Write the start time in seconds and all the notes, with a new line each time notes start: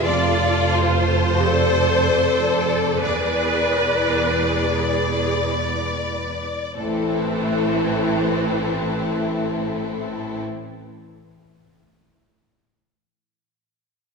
0.03 F1 F2 F4 A4 D5
0.75 C5
1.48 A4 D5
2.24 A4
3.01 E1 E2 G#4 B4 D5
3.86 G#4
4.77 G#4 B4
6.77 A1 A2 E3 A3 C4 E4 A4